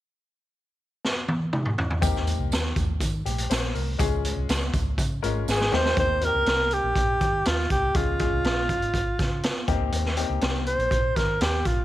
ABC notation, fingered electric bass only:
X:1
M:4/4
L:1/16
Q:1/4=122
K:Ebmix
V:1 name="Fingered electric bass" clef=bass
z16 | E,,3 C,, E,,2 E,,2 E,2 B,,,2 B,,,2 C,,2 | D,,3 C,, D,,2 D,,2 D,2 A,,,2 A,,,2 E,,2 | E,,3 D,, C,,3 B,,, B,,,2 E,2 E,,2 C,,2 |
D,,3 C,, B,,,3 A,,, A,,,2 D,3 z E,, D,, | E,,3 D,, C,,3 B,,, B,,,2 E,2 E,,2 B,,,2 |]